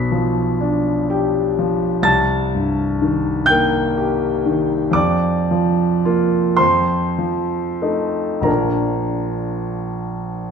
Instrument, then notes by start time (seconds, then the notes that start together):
grand piano
Already playing: B1 B2 B5 B6
0.12 F3
0.61 D4
1.10 G4
1.59 F3
2.02 C2 A5 A6
2.55 G2
3.02 D#3
3.46 A#3 G5 G6
3.97 G4
4.46 D#3
4.91 F2 D5 D6
5.51 F3
6.05 A#3 F4
6.57 F2 C5 C6
7.18 F3
7.82 A3 D#4
8.41 A#1 F3 A#3 D4 A#4 A#5